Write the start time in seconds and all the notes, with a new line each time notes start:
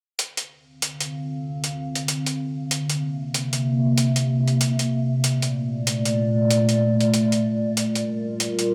0.19 D3 C4 F5, closed hi-hat
0.37 closed hi-hat
0.82 closed hi-hat
1.00 closed hi-hat
1.64 closed hi-hat
1.95 closed hi-hat
2.08 closed hi-hat
2.26 closed hi-hat
2.71 C3 A#3 E5, closed hi-hat
2.90 closed hi-hat
3.34 closed hi-hat
3.53 closed hi-hat
3.98 closed hi-hat
4.16 closed hi-hat
4.48 closed hi-hat
4.61 closed hi-hat
4.79 closed hi-hat
5.24 A#2 A3 D5, closed hi-hat
5.42 closed hi-hat
5.87 closed hi-hat
6.05 closed hi-hat
6.51 closed hi-hat
6.69 closed hi-hat
7.01 closed hi-hat
7.14 closed hi-hat
7.32 closed hi-hat
7.76 G3 F4 A#4, closed hi-hat
7.95 closed hi-hat
8.40 closed hi-hat
8.59 closed hi-hat